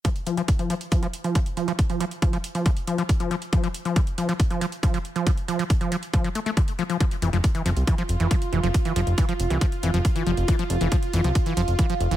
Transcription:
<<
  \new Staff \with { instrumentName = "Ambient pad" } { \time 4/4 \tempo 4 = 138 r1 | r1 | r1 | r1 |
f'1~ | f'1~ | f'1 | }
  \new Staff \with { instrumentName = "Acid bass" } { \clef bass \time 4/4 f16 r16 f16 f16 r16 f16 f16 r16 f16 f16 r16 f16 f16 r16 f16 f16 | r16 f16 f16 r16 f16 f16 r16 f16 f16 r16 f16 f16 r16 f16 f16 r16 | f16 f16 r16 f16 f16 r16 f16 f16 r16 f16 f16 r16 f16 f16 r16 f16 | f16 r16 f16 f16 r16 f16 f16 r16 f16 f16 a16 a16 f16 r16 f16 f16 |
f16 r16 e16 f16 r16 e16 f16 r16 e16 f16 r16 e16 f16 r16 e16 f16 | r16 e16 f16 r16 e16 f16 r16 e16 f16 r16 e16 f16 r16 e16 f16 r16 | e16 f16 r16 e16 f16 r16 e16 f16 r16 e16 f16 r16 e16 f16 r16 e16 | }
  \new Staff \with { instrumentName = "Analog synth bass" } { \clef bass \time 4/4 r1 | r1 | r1 | r1 |
r8 f,,16 f,,16 r8 f,,16 c,16 r8 f,,16 f,,16 r8 f,,16 f,,16 | r8 f,,16 f,,16 r8 f,,16 c,16 r8 f,,16 f,,16 r8 f,,16 f,,16 | r8 f,,16 f,,16 r8 f,,16 c,16 r8 f,,16 f,,16 r8 f,,16 f,,16 | }
  \new DrumStaff \with { instrumentName = "Drums" } \drummode { \time 4/4 <hh bd>16 hh16 hh16 hh16 <hh bd>16 hh16 hh16 hh16 <hh bd>16 hh16 hh16 hh16 <hh bd>16 hh16 hh16 hh16 | <hh bd>16 hh16 hh16 hh16 <hh bd>16 hh16 hh16 hh16 <hh bd>16 hh16 hh16 hh16 <hh bd>16 hh16 hh16 hh16 | <hh bd>16 hh16 hh16 hh16 <hh bd>16 hh16 hh16 hh16 <hh bd>16 hh16 hh16 hh16 <hh bd>16 hh16 hh16 hh16 | <hh bd>16 hh16 hh16 hh16 <hh bd>16 hh16 hh16 hh16 <hh bd>16 hh16 hh16 hh16 <hh bd>16 hh16 hh16 hh16 |
<hh bd>16 hh16 hh16 hh16 <hh bd>16 hh16 hh16 hh16 <hh bd>16 hh16 hh16 hh16 <hh bd>16 hh16 hh16 hh16 | <hh bd>16 hh16 hh16 hh16 <hh bd>16 hh16 hh16 hh16 <hh bd>16 hh16 hh16 hh16 <hh bd>16 hh16 hh16 hh16 | <hh bd>16 hh16 hh16 hh16 <hh bd>16 hh16 hh16 hh16 <hh bd>16 hh16 hh16 hh16 <hh bd>16 hh16 hh16 hh16 | }
>>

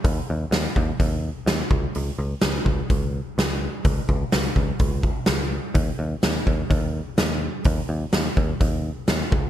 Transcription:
<<
  \new Staff \with { instrumentName = "Picked electric bass" } { \clef bass \time 4/4 \key des \mixolydian \tempo 4 = 126 ees,8 ees,8 ees,8 ees,8 ees,4 ees,8 des,8 | des,8 des,8 des,8 des,8 des,4 des,4 | des,8 des,8 des,8 des,8 des,4 des,4 | ees,8 ees,8 ees,8 ees,8 ees,4 ees,4 |
ees,8 ees,8 ees,8 ees,8 ees,4 ees,8 des,8 | }
  \new DrumStaff \with { instrumentName = "Drums" } \drummode { \time 4/4 <hho bd>4 <hho sn>8 bd8 <hho bd>4 <hho sn>8 bd8 | hho4 <hho sn>8 bd8 <hho bd>4 <hho sn>4 | <hho bd>8 bd8 <hho sn>8 bd8 <hho bd>8 bd8 <hho sn>4 | <hho bd>4 <hho sn>8 bd8 <hho bd>4 <hho sn>4 |
<hho bd>4 <hho sn>8 bd8 <hho bd>4 <hho sn>8 bd8 | }
>>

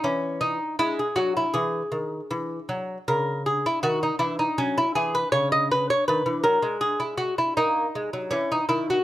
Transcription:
<<
  \new Staff \with { instrumentName = "Lute" } { \time 4/4 \key e \major \tempo 4 = 80 cis'8 dis'8 e'16 gis'16 fis'16 e'16 gis'2 | \key fis \mixolydian ais'8 gis'16 e'16 fis'16 dis'16 e'16 dis'16 cis'16 e'16 gis'16 b'16 cis''16 dis''16 b'16 cis''16 | b'8 ais'8 gis'16 e'16 fis'16 e'16 dis'4 cis'16 dis'16 e'16 fis'16 | }
  \new Staff \with { instrumentName = "Lute" } { \clef bass \time 4/4 \key e \major e4 gis8 fis8 e8 dis8 e8 fis8 | \key fis \mixolydian cis4 dis8 e8 fis8 e8 cis4 | dis16 e16 fis16 gis4~ gis16 ais8 gis16 fis16 e8 dis8 | }
>>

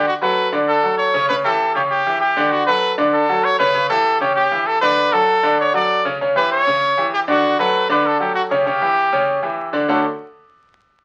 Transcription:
<<
  \new Staff \with { instrumentName = "Trumpet" } { \time 4/4 \key d \major \tempo 4 = 195 fis'8 b'4 r8 a'4 cis''4 | b'8 a'4 g'8 g'4 g'4 | fis'8 b'4 r8 a'4 cis''8 b'8~ | b'8 a'4 g'8 g'4 a'8 b'8~ |
b'8 a'4. cis''8 d''4 r8 | r8 b'8 cis''2 g'8 fis'8~ | fis'8 b'4 b'8 a'8 g'8 fis'8 g'8~ | g'2. r4 |
r1 | }
  \new Staff \with { instrumentName = "Grand piano" } { \time 4/4 \key d \major r8 <fis fis' a'>4 <d d' d''>4 <fis fis' a'>4 <cis cis' cis''>8 | <cis cis' cis''>8 <e e' g'>4 <cis cis' cis''>4 <e e' g'>4 <d d' d''>8~ | <d d' d''>8 <fis fis' a'>4 <d d' d''>4 <fis fis' a'>4 <cis cis' cis''>8 | <cis cis' cis''>8 <e e' g'>4 <cis cis' cis''>4 <e e' g'>4 <d d' d''>8~ |
<d d' d''>8 <fis fis' a'>4 <d d' d''>4 <fis fis' a'>4 <cis cis' cis''>8 | <cis cis' cis''>8 <e e' g'>4 <cis cis' cis''>4 <e e' g'>4 <d d' d''>8~ | <d d' d''>8 <fis fis' a'>4 <d d' d''>4 <fis fis' a'>4 <cis cis' cis''>8 | <cis cis' cis''>8 <e e' g'>4 <cis cis' cis''>4 <e e' g'>4 <d d' d''>8 |
<d a cis' d' fis' a'>8 r2. r8 | }
>>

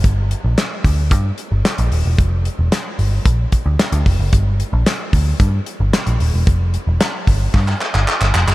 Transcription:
<<
  \new Staff \with { instrumentName = "Picked electric bass" } { \clef bass \time 4/4 \key g \dorian \tempo 4 = 112 g,,8. bes,,16 r8 d,8 g,8 r16 g,,16 r16 bes,,16 ees,,16 e,,16 | f,,8. e,,16 r8 g,,8 bes,,8 r16 d,16 r16 d,16 f,,16 fis,,16 | g,,8. bes,,16 r8 d,8 g,8 r16 g,,16 r16 bes,,16 ees,,16 e,,16 | f,,8. e,,16 r8 g,,8 g,8 r16 g,,16 r16 g,,16 f,,16 fis,,16 | }
  \new DrumStaff \with { instrumentName = "Drums" } \drummode { \time 4/4 <hh bd>8 hh8 <hc hh sn>8 <hho bd>8 <hh bd>8 hh8 <hc hh sn>16 hh16 hho8 | <hh bd>8 hh8 <hc hh sn>8 hho8 <hh bd>8 <hh bd>8 <hc hh sn>16 hh16 <hho bd>8 | <hh bd>8 hh8 <hc hh sn>8 <hho bd>8 <hh bd>8 hh8 <hc hh sn>16 hh16 hho8 | <hh bd>8 hh8 <hc hh sn>8 <hho bd>8 <hc bd>16 hc16 hc16 hc16 hc16 hc16 hc16 hc16 | }
>>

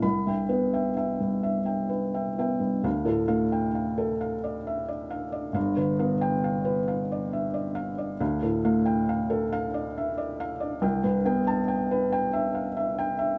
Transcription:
<<
  \new Staff \with { instrumentName = "Felt piano" } { \time 6/8 \key d \dorian \tempo 4. = 45 << { b''8 r2 r8 | r8. g''16 r2 | r8. g''16 r2 | r8. g''16 r2 |
r8. a''16 r2 | } \\ { r16 <e'' g''>16 b'16 <e'' g''>16 <e'' g''>16 g,16 e''16 <e'' g''>16 b'16 <e'' g''>16 <e'' g''>16 r16 | f''16 a'16 f''8 f''16 a'16 f''16 d''16 e''16 d''16 f''16 d''16 | f''16 b'16 f''8 f''16 b'16 f''16 d''16 e''16 d''16 f''16 d''16 | f''16 a'16 f''8 f''16 a'16 f''16 d''16 e''16 d''16 f''16 d''16 |
g''16 b'16 g''8 g''16 b'16 g''16 e''16 f''16 e''16 g''16 e''16 | } >> }
  \new Staff \with { instrumentName = "Felt piano" } { \clef bass \time 6/8 \key d \dorian c,16 g,16 b8 r4. b16 g,16 | d,16 a,16 a8 r2 | <g,, g,>16 d16 b8 r2 | d,16 a,16 a8 r2 |
c,16 g,16 b8 r2 | }
>>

